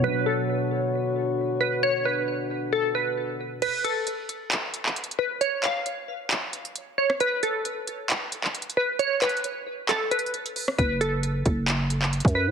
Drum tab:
CC |------------------------------------------------|------------------------------------------------|x-----------------------------------------------|------------------------------------------------|
HH |------------------------------------------------|------------------------------------------------|x-----x-----x-----x-----x-----x-----x-x-x-------|x-----x-----x-----------x-----x--x--x-----------|
CP |------------------------------------------------|------------------------------------------------|------------------------x--------x--------------|------x-----------------x-----------------------|
SD |------------------------------------------------|------------------------------------------------|------------------------------------------------|---------------------------------------------r--|
BD |------------------------------------------------|------------------------------------------------|------------------------------------------------|------------------------------------------------|

CC |------------------------------------------------|------------------------------------------------|------------------------------------------------|
HH |x-----x-----x-----x-----x-----x-----x-x-x-------|x-----x-x-x-x-----------x-----x-x-x-x--x--o-----|x-----x-----x-----x-----x-----x-----x-x-x-------|
CP |------------------------x--------x--------------|------x-----------------x-----------------------|------------------------x--------x--------------|
SD |------------------------------------------------|---------------------------------------------r--|------------------------------------------------|
BD |------------------------------------------------|------------------------------------------------|o-----------------o--------------------o--------|